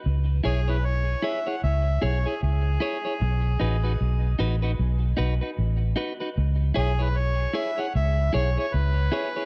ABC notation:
X:1
M:4/4
L:1/16
Q:"Swing 16ths" 1/4=76
K:C#m
V:1 name="Harmonica"
z2 G B c2 e f e2 c G G4- | G6 z8 z2 | z2 G B c2 e f e2 c c B4 |]
V:2 name="Clean electric guitar"
z2 [EGc] [EGc] z2 [EGc] [EGc] z2 [EGc] [EGc] z2 [EGc] [EGc] | z2 [DFB] [DFB] z2 [DFB] [DFB] z2 [DFB] [DFB] z2 [DFB] [DFB] | z2 [EGc] [EGc] z2 [EGc] [EGc] z2 [EGc] [EGc] z2 [EGc] [EGc] |]
V:3 name="Fingered electric bass" clef=bass
C,,2 B,,,4 z2 C,,2 B,,, z C,,2 z2 | B,,,2 A,,,2 B,,,2 A,,,2 B,,,2 B,,, z A,,,2 z2 | C,,2 B,,,4 z2 C,,2 B,,, z C,,2 z2 |]